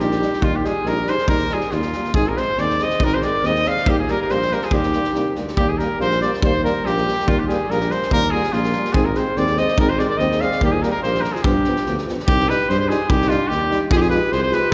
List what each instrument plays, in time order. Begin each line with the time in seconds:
Already playing: tuba A#1
0.00 euphonium D#4, clarinet D#4, trumpet G4
0.11 snare
0.19 trombone G3, euphonium D#4, snare
0.33 snare
0.41 tuba D#2, trombone G3, euphonium D#4, trumpet F4, kick
0.47 clarinet A#3
0.56 clarinet D#4, trumpet G4
0.64 trombone G3, euphonium D#4, trumpet G#4, snare
0.70 clarinet F4
0.84 tuba A#1, trombone G3, euphonium D#4, trumpet A#4, snare
0.93 clarinet G4
1.04 trombone G3, euphonium D#4, snare
1.09 trumpet C5
1.14 clarinet G#4
1.18 snare
1.28 tuba D#2, trombone G3, euphonium D#4, trumpet A#4, kick
1.33 clarinet G4
1.39 snare
1.49 trombone G3, euphonium D#4, trumpet G#4, snare
1.54 clarinet F4
1.60 snare
1.71 tuba D#2, trombone G3, euphonium D#4, trumpet F4, snare
1.76 clarinet A#3
1.82 snare
1.92 trombone G3, euphonium D#4, snare
2.04 snare
2.14 tuba G#1, trombone G#3, euphonium C4, clarinet D#4, trumpet G#4, kick
2.28 clarinet G4, trumpet A#4
2.35 trombone G#3, euphonium C4, clarinet G#4, trumpet C5, snare
2.57 tuba D#2, trombone G#3, euphonium C4, trumpet D5, snare
2.61 clarinet G#4
2.70 snare
2.79 trombone G#3, euphonium C4, trumpet D#5, snare
2.83 clarinet C5
2.90 snare
3.00 tuba G#1, trombone G#3, euphonium C4, clarinet D#4, kick
3.04 trumpet A#4
3.14 clarinet G#4, trumpet C5
3.21 trombone G#3, euphonium C4, trumpet D5, snare
3.27 clarinet A#4
3.43 tuba D#2, trombone G#3, euphonium C4, clarinet C5, trumpet D#5, snare
3.55 snare
3.65 trombone G#3, euphonium C4, clarinet D5, trumpet F5, snare
3.77 snare
3.85 tuba D#2, trombone G3, euphonium A#3, clarinet D#4, trumpet G4, kick
3.99 clarinet F4, trumpet G#4
4.08 trombone G3, euphonium A#3, trumpet A#4, snare
4.12 clarinet G4
4.22 clarinet G4, trumpet A#4
4.29 tuba A#1, trombone G3, euphonium A#3, clarinet G4, trumpet C5, snare
4.42 snare
4.50 trombone G3, euphonium A#3, trumpet A#4, snare
4.55 clarinet G4
4.62 clarinet F4, trumpet G#4, snare
4.71 tuba D#2, trombone G3, euphonium A#3, clarinet D#4, trumpet G4, kick
4.83 snare
4.93 trombone G3, euphonium A#3, snare
5.04 snare
5.14 tuba C2, trombone G3, euphonium A#3, snare
5.35 tuba D2, trombone G3, euphonium A#3, snare
5.48 snare
5.57 tuba D#2, trombone G3, euphonium A#3, trumpet G4, kick
5.69 trumpet G#4
5.78 trombone G3, euphonium A#3, trumpet A#4, snare
5.98 tuba A#1, trombone G3, euphonium A#3, trumpet C5, snare
6.11 snare
6.20 trombone G3, euphonium A#3, trumpet D5, snare
6.33 snare
6.42 tuba D#2, trombone G3, euphonium A#3, trumpet C5, kick
6.63 trombone G3, euphonium A#3, trumpet A#4, snare
6.82 tuba A#1, trombone G3, euphonium A#3, trumpet G4, snare
6.97 snare
7.06 trombone G3, euphonium A#3, snare
7.19 snare
7.26 tuba D#2, trombone G3, euphonium A#3, trumpet F4, kick
7.39 trumpet G4
7.47 trombone G3, euphonium A#3, trumpet G#4, snare
7.68 tuba A#1, trombone G3, euphonium A#3, trumpet A#4, snare
7.80 snare
7.90 trombone G3, euphonium A#3, trumpet C5, snare
8.02 snare
8.11 tuba D#2, trombone G3, euphonium A#3, clarinet G4, trumpet A#4, kick
8.22 snare
8.31 trombone G3, euphonium A#3, clarinet F4, trumpet G#4
8.43 snare
8.52 tuba A#1, trombone G3, euphonium A#3, clarinet A#3, trumpet F4, snare
8.63 snare
8.72 euphonium A#3, snare
8.76 trombone G3
8.85 snare
8.93 tuba G#1, trombone G#3, euphonium C4, clarinet D#4, trumpet G#4, kick
9.05 clarinet G4, trumpet A#4
9.15 trombone G#3, euphonium C4, clarinet G#4, trumpet C5, snare
9.36 tuba D#2, trombone G#3, euphonium C4, clarinet G#4, trumpet D5, snare
9.47 snare
9.57 trombone G#3, euphonium C4, clarinet C5, trumpet D#5, snare
9.68 snare
9.77 tuba G#1, trombone G#3, euphonium C4, clarinet D#4, trumpet A#4, kick
9.89 clarinet G#4, trumpet C5
9.97 trombone G#3, euphonium C4, clarinet A#4, trumpet D5, snare
10.02 clarinet A#4, trumpet D5
10.09 clarinet A#4, trumpet D5
10.18 tuba D#2, trombone G#3, euphonium C4, clarinet C5, trumpet D#5, snare
10.31 snare
10.41 trombone G#3, euphonium C4, clarinet D5, trumpet F5, snare
10.52 snare
10.61 tuba D#2, trombone G3, euphonium A#3, clarinet D#4, trumpet G4, kick
10.72 clarinet F4, trumpet G#4
10.82 trombone G3, euphonium A#3, clarinet G4, trumpet A#4, snare
10.91 clarinet G4, trumpet A#4
11.01 tuba A#1, trombone G3, euphonium A#3, clarinet G4, trumpet C5, snare
11.14 snare
11.21 trombone G3, euphonium A#3, clarinet G4, trumpet A#4, snare
11.33 clarinet F4, trumpet G#4, snare
11.43 tuba G2, trombone F3, euphonium B3, clarinet D4, trumpet G4, kick
11.64 trombone F3, euphonium B3, snare
11.76 snare
11.86 tuba D2, trombone F3, euphonium B3, snare
11.98 snare
12.05 trombone F3, snare
12.10 euphonium B3
12.19 snare
12.26 tuba C2, clarinet D#4, trumpet G4, kick
12.40 snare
12.48 trombone G3, euphonium D#4, clarinet G4, trumpet B4, snare
12.69 tuba G2, clarinet G4, trumpet C5, snare
12.78 clarinet G#4, trumpet C5
12.89 trombone G3, euphonium D#4, clarinet F4, trumpet G#4, snare
13.09 tuba C2, clarinet D#4, trumpet G4, kick
13.22 snare
13.28 trombone G3, clarinet D4, euphonium D#4, trumpet F4, snare
13.48 tuba D#2, trumpet G4, snare
13.53 clarinet D#4
13.69 trombone G3, euphonium D#4, snare
13.91 tuba F2, clarinet F4, trumpet G#4, kick
13.96 clarinet D#4, trumpet G4
14.01 clarinet F4, trumpet G#4, snare
14.09 trombone G#3, euphonium F4, clarinet G4, trumpet B4, snare
14.32 tuba C2, clarinet G#4, trumpet C5, snare
14.43 clarinet G#4, trumpet C5
14.50 trombone G#3, euphonium F4, clarinet G4, trumpet B4, snare